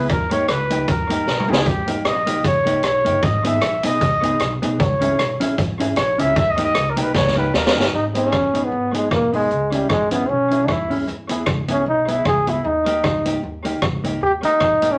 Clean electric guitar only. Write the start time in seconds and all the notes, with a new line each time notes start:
0.31 A#3 D#4 G4
0.70 A#3 D#4 G4
0.88 muted clean electric guitar stroke
1.09 A#3 D#4 G4
1.48 A#3 D#4 G4
1.88 A#3 D#4 G4
2.26 A#3 D#4 G4
2.44 muted clean electric guitar stroke
2.66 A#3 D#4 G4
3.05 A#3 D#4 G4
3.44 B3 D#4 G#4
3.83 B3 D#4 G#4
4.01 muted clean electric guitar stroke
4.22 B3 D#4 G#4
4.62 B3 D#4 G#4
5.01 C#4 E4 G#4
5.40 C#4 E4 G#4
5.57 muted clean electric guitar stroke
5.80 C#4 E4 G#4
6.18 C#4 E4 G#4
6.58 A#3 D#4 G4
6.96 A#3 D#4 G4
7.15 muted clean electric guitar stroke
7.36 A#3 D#4 G4
7.75 A#3 D#4 G4
8.15 B3 D#4 G#4
8.54 B3 D#4 G#4
8.72 muted clean electric guitar stroke
8.93 B3 D#4 G#4
9.33 B3 D#4 G#4
9.72 C#4 E4 G#4
10.11 C#4 E4 G#4
10.29 muted clean electric guitar stroke
10.51 C#4 E4 G#4
10.90 C#4 E4 G#4
11.29 B3 E4 G#4
11.68 B3 E4 G#4
11.86 muted clean electric guitar stroke
12.08 B3 E4 G#4
12.47 B3 E4 G#4
12.86 A#3 D#4 G4
13.26 A#3 D#4 G4
13.43 muted clean electric guitar stroke
13.65 A#3 D#4 G4
14.04 A#3 D#4 G4
14.43 A#3 D#4 G4
14.82 A#3 D#4 G4